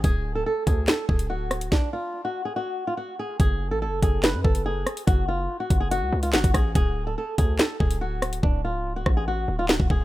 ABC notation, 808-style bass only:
X:1
M:4/4
L:1/16
Q:1/4=143
K:F#m
V:1 name="808-style bass" clef=bass
D,,,4 z2 D,,2 z2 D,,,6 | z16 | F,,,3 A,,,3/2 F,,,3/2 F,,,3 F,, F,,,4 z2 | F,,,4 z2 F,,,3 C,, C,,2 G,,, F,,, A,,,2 |
D,,,4 z2 D,,2 z2 D,,,6 | D,,,3 C,,,3 A,,,4 D,,,3 D,,, D,,,2 |]